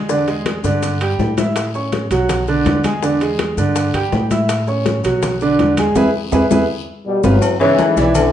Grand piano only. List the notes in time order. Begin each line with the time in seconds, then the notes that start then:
0.09 D3 D4 D5
0.28 G#3 G#4 G#5
0.64 D3 D4 D5
1.01 G3 G4 G5
1.38 E4 E5 E6
1.74 C#4 C#5 C#6
2.11 F#3 F#4 F#5
2.48 D3 D4 D5
2.84 G#3 G#4 G#5
3.03 D3 D4 D5
3.21 G#3 G#4 G#5
3.58 D3 D4 D5
3.94 G3 G4 G5
4.31 E4 E5 E6
4.68 C#4 C#5 C#6
5.05 F#3 F#4 F#5
5.42 D3 D4 D5
5.78 G#3 G#4 G#5
5.97 E4 G#4 B4
6.33 E4 G#4 B4
6.51 E4 G#4 B4
7.24 F4 G4 B4
7.61 C#3 C#4 C#5
7.79 E3 E4 A4
7.97 E3 E4 D5